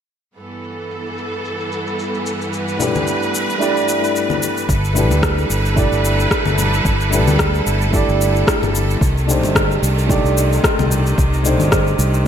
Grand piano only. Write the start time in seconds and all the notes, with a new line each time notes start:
2.77 A3 D4 E4 G4
2.82 B4
3.58 A3 D4 E4 G4
3.63 D5
4.93 A3 D4 E4 G4
4.98 B4
5.74 A3 D4 E4 G4
5.79 D5
7.10 A3 D4 E4 G4
7.14 B4
7.91 A3 D4 E4 G4
7.96 D5
9.26 A3 D4 D#4 G4
9.30 C5
10.07 A3 D4 D#4 G4
10.11 D5
11.43 A3 D4 D#4 G4
11.47 C5
12.24 A3